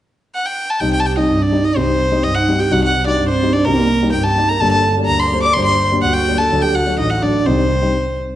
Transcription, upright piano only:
0.81 G3 C4 D#4
1.17 G3 C4 D#4
1.52 G3 C4 D#4
1.76 G3 C4 D#4
2.11 G3 C4 D#4
2.48 G3 C4 D#4
2.71 G3 C4 D#4
3.07 G3 C4 D#4
3.43 G3 C4 D#4
3.67 G3 C4 D#4
4.02 G3 C4 D#4
4.37 G3 C4 D#4
4.61 G3 A#3 D4
4.97 G3 A#3 D4
5.32 G3 A#3 D4
5.56 G3 A#3 D4
5.92 G3 A#3 D4
6.28 G3 A#3 D4
6.51 F#3 A3 D4
6.86 F#3 A3 D4
7.23 F#3 A3 D4
7.47 G3 C4 D#4
7.82 G3 C4 D#4

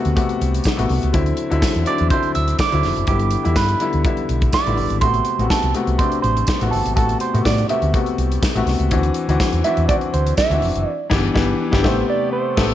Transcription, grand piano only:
Already playing: C3 A3 B3 D4 F#4
0.16 C3 A3 B3 F#4
0.77 C3 A3 B3 F#4
1.13 D3 F#3 C4 E4
1.50 D3 F#3 C4 E4
1.86 D3 F#3 C4 D4
2.11 D3 F#3 C4 E4
2.71 D3 F#3 C4 E4
3.08 D3 G3 B3 E4
3.43 D3 G3 B3 E4
3.80 D3 G3 B3 E4
4.05 D3 G3 B3 E4
4.66 D3 G3 B3 E4
5.02 C3 A3 B3 F#4
5.39 C3 A3 B3 F#4
5.74 C3 A3 B3 F#4
5.99 C3 A3 B3 D4
6.61 C3 A3 B3 F#4
6.96 C3 A3 B3 F#4
7.34 C3 A3 B3 F#4
7.69 C3 A3 B3 F#4
7.94 C3 A3 B3 F#4
8.55 C3 A3 B3 F#4
8.91 E3 C4 D4 F#4
9.29 E3 C4 D4 F#4
9.65 E3 C4 D4 F#4
9.89 E3 C4 D4 F#4
10.51 E3 C4 D4 F#4
11.10 E3 B3 D4 G4
11.34 E3 B3 D4 G4
11.71 E3 B3 D4 G4
11.84 C3 A3 B3 G4
12.57 C3 A3 B3 A4

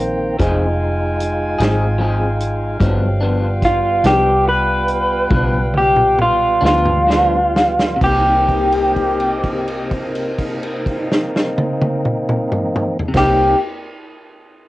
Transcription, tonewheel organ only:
Already playing: D#3 A#3 C4
0.40 G#3 D#4 F4
2.81 F#3 G#3 C4
3.22 G3 B3 F4
8.01 E3 A#3 C4
8.48 A#3 C4 D#4
13.14 A#3 C4 D#4

